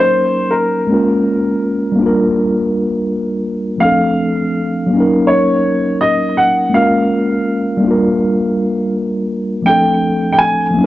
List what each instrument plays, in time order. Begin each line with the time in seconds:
Already playing: tine electric piano F#3 A#3 C#4 D#4 A#4, upright piano C5
0.51 upright piano A#4
0.87 tine electric piano G#3 A#3 C#4
0.92 tine electric piano F4 A#4
1.92 tine electric piano G3 A#3
1.99 tine electric piano D4 F4
2.06 tine electric piano A#4
3.78 tine electric piano F3 A3 C4, upright piano F5
3.83 tine electric piano D4 A4
4.86 tine electric piano F#3 A#3
4.93 tine electric piano C#4 D#4
5.00 tine electric piano A#4
5.27 upright piano C#5
6.01 upright piano D#5
6.37 upright piano F#5
6.70 tine electric piano G#3 A#3 C#4
6.74 tine electric piano F4 A#4, upright piano F5
7.77 tine electric piano G3 A#3
7.84 tine electric piano D4 F4
7.91 tine electric piano A#4
9.62 tine electric piano F3 A3 C4, upright piano G5
9.67 tine electric piano D4 A4
10.33 upright piano G5
10.39 upright piano G#5
10.71 tine electric piano F3 A#3
10.77 tine electric piano F#3 C#4 D#4